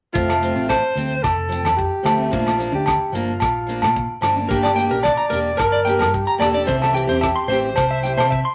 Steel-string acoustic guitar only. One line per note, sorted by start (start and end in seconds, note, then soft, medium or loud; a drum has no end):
0.13 0.32 A3 medium
0.13 0.32 C4 medium
0.13 muted steel-string acoustic guitar stroke medium
0.41 0.56 F3 soft
0.41 0.57 A3 medium
0.41 0.54 C4 medium
0.55 0.73 A3 soft
0.55 0.72 C4 soft
0.95 1.13 F3 soft
0.95 1.14 A3 soft
0.95 1.14 C4 medium
1.48 1.67 F3 soft
1.48 1.69 C4 soft
2.03 2.19 F3 soft
2.03 2.20 A3 soft
2.03 muted steel-string acoustic guitar stroke medium
2.17 2.32 A3 soft
2.17 2.31 C4 soft
2.31 2.49 F3 medium
2.31 2.50 A#3 medium
2.31 2.50 D4 medium
2.58 2.73 F3 soft
2.58 2.74 A#3 medium
2.58 2.71 D4 medium
2.72 2.89 D4 soft
3.12 3.30 F3 soft
3.12 3.32 A#3 medium
3.12 3.32 D4 medium
3.67 3.85 F3 medium
3.67 3.86 A#3 medium
3.67 3.86 D4 medium
4.21 4.37 F3 medium
4.21 4.38 A#3 medium
4.21 4.35 D4 medium
4.36 4.47 A#3 soft
4.36 4.49 D4 soft
4.49 4.67 A#3 medium
4.49 4.68 D4 medium
4.49 4.68 G4 medium
4.75 4.91 A#3 medium
4.75 4.92 D4 medium
4.75 4.87 G4 medium
4.89 5.06 G4 soft
4.93 5.08 D4 soft
5.29 5.48 A#3 soft
5.29 5.49 D4 medium
5.29 5.50 G4 medium
5.85 6.03 A#3 medium
5.85 6.04 D4 medium
5.85 6.05 G4 medium
6.38 6.54 A#3 soft
6.38 6.55 D4 medium
6.38 6.52 G4 soft
6.53 6.66 D4 soft
6.53 6.66 G4 soft
6.65 6.84 E3 medium
6.65 6.84 C4 medium
6.65 6.84 E4 medium
6.65 muted steel-string acoustic guitar stroke medium
6.91 7.08 E3 medium
6.91 7.08 C4 soft
6.91 7.08 E4 soft
6.91 7.06 G4 medium
7.07 7.26 C4 soft
7.07 7.25 E4 soft
7.07 7.24 G4 soft
7.48 7.66 E3 medium
7.48 7.66 C4 medium
7.48 7.67 E4 medium
7.48 7.68 G4 medium
8.02 8.20 E3 medium
8.02 8.21 E4 medium
8.02 8.22 G4 medium